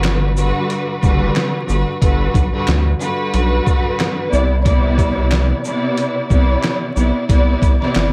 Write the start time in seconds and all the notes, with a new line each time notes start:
Already playing: G1 G2 D3 F#4 B4
0.04 finger snap, snare, clap, closed hi-hat
0.37 G2 D3 F#4 B4, shaker
0.70 closed hi-hat
1.01 F#1 D3 G3 F#4 B4, kick, shaker
1.36 finger snap, snare, clap, closed hi-hat
1.67 G1 G2 D3 F#4 B4, shaker
2.01 G1 G2 D3 F#4 B4, kick, closed hi-hat
2.34 B1, kick, closed hi-hat, shaker
2.52 G2 D3 F#4 B4
2.67 D2, finger snap, snare, clap, closed hi-hat
3.01 G2 D3 F#4 B4, shaker
3.34 B1, closed hi-hat
3.67 kick, shaker
4.00 finger snap, snare, clap, closed hi-hat
4.30 C2 C3 B3 E4 D5, shaker
4.64 C3 B3 E4 D5, kick, closed hi-hat
4.98 kick, closed hi-hat, shaker
5.31 finger snap, snare, clap, closed hi-hat
5.65 C3 B3 E4 D5, shaker
5.97 closed hi-hat
6.29 C2 C3 B3 E4 D5, kick, shaker
6.63 finger snap, snare, clap, closed hi-hat
6.95 B1 C3 B3 E4 D5, shaker
7.28 C2 C3 B3 E4 D5, kick, closed hi-hat
7.62 C2, kick, closed hi-hat, shaker
7.81 C3 B3 E4 D5, snare
7.95 G1, finger snap, snare, clap, closed hi-hat